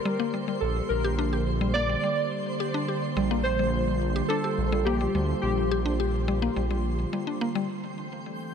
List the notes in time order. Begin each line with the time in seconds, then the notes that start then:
Already playing: D3 G3 A#3 G4 A#4 C5
0.05 G3
0.20 A#3
0.34 G3
0.48 G3
0.61 A#1 A4
0.89 A#1 A#4
1.04 G4
1.19 D4
1.33 G4
1.61 G3
1.74 A#3 D5
1.89 G3
2.04 G3
2.60 G4
2.74 D4
2.88 G4
3.17 A#1 G3 F4
3.31 A#3
3.44 G3 C5
3.59 G3
4.16 G4
4.28 D4 A4
4.44 G4
4.58 A#1
4.72 G3
4.85 A#3 G4
5.01 G3
5.15 D2 G3
5.42 A#1 G4
5.71 G4
5.86 D4
6.00 G4
6.28 G3
6.42 A#3
6.56 A#1 G3
6.71 G3
7.13 G3
7.27 D4
7.41 A#3
7.55 G3
7.70 E3 A3 C4 A4 G5